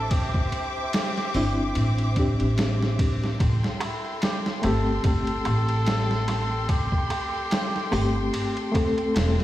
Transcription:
Already playing: upright bass A1, reed electric piano C4 D4 E4, muted trumpet A4, string section C5 E5 D6
0.11 muted trumpet G4, kick, ride
0.34 kick
0.52 ride
0.93 snare, ride
1.18 snare
1.34 upright bass G1, reed electric piano C4 D4 E4, open hi-hat
1.75 upright bass A1, ride
1.98 ride
2.15 reed electric piano C4 D4, kick, ride
2.19 reed electric piano G4
2.40 upright bass A1, ride
2.58 snare, ride
2.82 snare
2.99 kick, ride
3.24 snare
3.39 upright bass A1, string section A4 G5 C6, kick, ride, darbuka tek
3.63 snare, darbuka tek
3.81 muted trumpet E4, ride, darbuka tek
4.05 darbuka tek
4.22 muted trumpet G4, snare, ride, darbuka tek
4.46 snare, darbuka tek
4.62 upright bass G1, reed electric piano A3 C4, muted trumpet A4, ride, darbuka tek
4.66 reed electric piano G4
4.87 darbuka tek
5.04 upright bass G1, muted trumpet A4, kick, ride, darbuka tek
5.27 ride
5.45 upright bass A1, ride, darbuka tek
5.69 ride, darbuka tek
5.86 snare, ride, darbuka tek
6.10 snare, darbuka tek
6.28 snare, ride, darbuka tek
6.52 darbuka tek
6.69 muted trumpet G4, kick, ride, darbuka tek
6.92 kick, darbuka tek
7.10 ride, darbuka tek
7.34 darbuka tek
7.51 snare, ride, darbuka tek
7.74 snare, darbuka tek
7.92 upright bass G1, reed electric piano A3 C4 G4, open hi-hat, darbuka tek
8.16 darbuka tek
8.33 ride, darbuka tek
8.57 ride
8.72 reed electric piano A3 C4, kick, ride, darbuka tek
8.76 reed electric piano A4
8.98 ride, darbuka tek
9.15 upright bass E1, snare, ride, darbuka tek
9.39 snare, darbuka tek

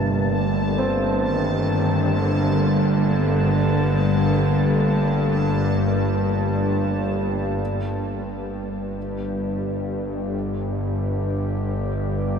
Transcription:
Already playing: synth drone G1 G2, bass clarinet C3, ambient pad G3 D4 A4 A#4, synth texture A5
0.32 bass clarinet D3
0.78 grand piano C4
1.22 bass clarinet D#3
2.15 bass clarinet D3
7.60 synth drone G1 G2, synth texture G4

